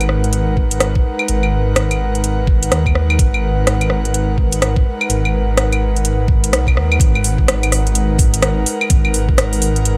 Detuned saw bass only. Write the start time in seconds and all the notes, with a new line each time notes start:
Already playing: G#1
1.29 G#1
2.72 D#2
3.19 G#1
5.09 G#1
6.52 B1
6.76 D#2
7.00 G#1
8.90 G#1